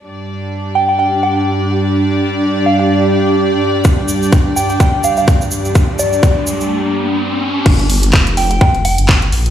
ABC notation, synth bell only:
X:1
M:4/4
L:1/16
Q:"Swing 16ths" 1/4=126
K:Cdor
V:1 name="Synth bell"
z6 g g g2 g2 z4 | z6 f f z8 | z6 g g g2 f f z4 | z2 d4 z8 z2 |
z6 g g g2 g2 z4 |]